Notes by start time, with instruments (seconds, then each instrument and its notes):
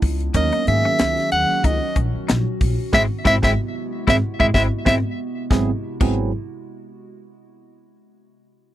Already playing: ambient pad G#3 B3 D4 E4
0.02 upright bass C#2, kick, open hi-hat
0.20 closed hi-hat
0.34 upright bass D#2, ambient pad D#3 F#3 C#4 F#4, tine electric piano F#3 A#3 C#4 D#4 A#4, clean electric guitar C#4, soprano saxophone D#5, kick, closed hi-hat
0.52 clean electric guitar D#4, closed hi-hat
0.67 upright bass G#2, tine electric piano D#3 F#3 A#3 C#4 G#4, soprano saxophone E5, closed hi-hat
0.85 clean electric guitar C#4, muted upright bass stroke
0.99 upright bass C#2, clean electric guitar C#4, snare, closed hi-hat
1.17 snare, closed hi-hat
1.32 upright bass D#2, soprano saxophone F#5, closed hi-hat
1.50 muted upright bass stroke
1.64 upright bass C#2, clean electric guitar D#4, soprano saxophone D#5, kick, closed hi-hat
1.96 upright bass A#1, clean electric guitar C#4, kick, closed hi-hat
2.15 muted upright bass stroke
2.28 upright bass A#1, clean electric guitar D#4, snare, closed hi-hat
2.61 upright bass A#1, kick, open hi-hat
2.91 upright bass G#1, ambient pad C3 G#3 B3 E4, tine electric piano G#3 C4 E4, clean electric guitar G#3 C4 E4, soprano saxophone E5, kick, snare
3.24 upright bass G#1, tine electric piano G#3 C4 E4, clean electric guitar G#3 C4 E4, soprano saxophone E5, kick, snare
3.42 upright bass G#1, tine electric piano G#3 C4 E4, clean electric guitar G#3 C4 E4, soprano saxophone E5, kick, snare
4.07 upright bass G#1, clean electric guitar G#3 C4 E4, tine electric piano G#3 C4 E4, soprano saxophone E5, kick, snare
4.39 upright bass G#1, tine electric piano G#3 C4 E4, clean electric guitar G#3 C4 E4, soprano saxophone E5, kick
4.54 upright bass G#1, tine electric piano G#3 C4 E4, clean electric guitar G#3 C4 E4, soprano saxophone E5, kick, snare
4.85 upright bass G#1, tine electric piano G#3 C4 E4, clean electric guitar G#3 C4 E4, soprano saxophone E5, kick, snare
5.51 upright bass G#1, tine electric piano F#3 B3 C4 E4 G#4, clean electric guitar G#3, kick, snare
6.01 upright bass G#1, tine electric piano F#3 B3 C4 E4 G#4, clean electric guitar G#3, kick, crash